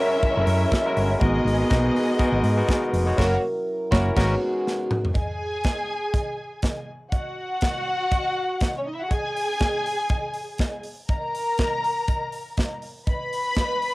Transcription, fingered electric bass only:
0.37 0.44 F#1 medium
0.47 0.64 F#2 medium
0.97 1.14 G1 loud
1.21 1.38 G#1 loud
1.45 1.62 G#1 medium
1.71 1.88 B1 medium
2.32 2.40 G#1 medium
2.43 2.61 G#2 loud
2.93 3.10 F1 loud
3.18 3.35 F#1 loud
3.92 4.09 F#1 loud
4.17 4.34 G#1 loud

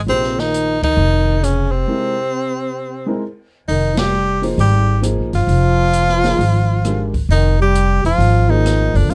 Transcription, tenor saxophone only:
0.09 0.41 C4 loud
0.40 0.83 D#4 medium
0.84 1.46 D#4 loud
1.44 1.73 C#4 medium
1.72 3.23 C4 medium
3.68 4.00 D#4 medium
3.99 4.43 G4 loud
4.61 5.02 G4 medium
5.35 7.11 F4 loud
7.31 7.58 D#4 medium
7.62 8.02 G4 medium
8.06 8.52 F4 loud
8.50 8.98 D#4 medium
8.97 9.12 D4 medium
9.10 9.14 F4 medium

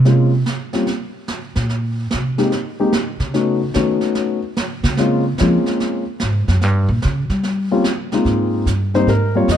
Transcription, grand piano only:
0.05 0.30 G#3 medium
0.05 0.30 A#3 soft
0.05 0.30 C4 soft
0.05 0.30 C#4 soft
0.05 0.30 F4 medium
0.73 0.86 G3 medium
0.73 0.86 A#3 soft
0.73 0.86 C4 soft
0.73 0.86 C#4 soft
0.73 0.86 F4 medium
2.38 2.50 G#3 medium
2.38 2.51 A#3 medium
2.38 2.51 C4 soft
2.38 2.51 D#4 medium
2.38 2.51 G4 medium
2.80 2.92 G#3 medium
2.80 2.92 A#3 medium
2.80 2.92 C4 medium
2.80 2.92 D#4 medium
2.80 2.92 G4 medium
3.34 3.58 A3 medium
3.34 3.58 B3 soft
3.34 3.58 C#4 soft
3.34 3.59 D#4 medium
3.34 3.59 F#4 medium
3.75 4.37 A3 medium
3.75 4.37 B3 soft
3.75 4.38 C#4 medium
3.75 4.38 D#4 soft
3.75 4.38 F#4 medium
4.98 5.22 G#3 medium
4.98 5.23 A#3 medium
4.98 5.23 C4 medium
4.98 5.23 C#4 medium
4.98 5.23 F4 medium
5.39 6.02 G#3 medium
5.39 6.02 A#3 medium
5.39 6.02 C4 soft
5.39 6.02 C#4 soft
5.39 6.02 F4 medium
7.71 7.83 G3 medium
7.71 7.84 A#3 medium
7.71 7.84 C4 medium
7.71 7.84 C#4 medium
7.71 7.84 F4 medium
8.13 8.64 G#3 medium
8.13 8.65 A#3 medium
8.13 8.65 C4 medium
8.13 8.65 D#4 medium
8.13 8.65 F4 medium
8.94 9.06 G3 medium
8.94 9.07 A#3 medium
8.94 9.07 C4 medium
8.94 9.07 D#4 medium
8.94 9.09 C5 medium
9.09 9.36 A#4 medium
9.35 9.48 G3 medium
9.35 9.48 A#3 medium
9.35 9.48 C4 medium
9.35 9.48 F4 medium
9.35 9.49 C#5 medium
9.52 9.57 D#5 medium

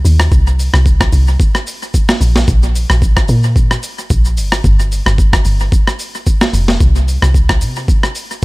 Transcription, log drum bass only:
0.05 0.29 D#2 loud
0.32 0.69 C2 loud
0.74 1.09 C2 loud
1.13 1.37 C2 loud
2.21 2.45 A#1 loud
2.48 2.85 A#1 loud
2.90 3.25 A#1 medium
3.29 3.77 A#2 loud
4.10 4.39 A#1 loud
4.37 4.61 G1 loud
4.64 5.02 G1 loud
5.06 5.41 G1 loud
5.45 5.69 G1 medium
6.53 6.78 F1 loud
6.80 7.18 C2 loud
7.22 7.63 C2 medium
7.61 8.10 C3 loud

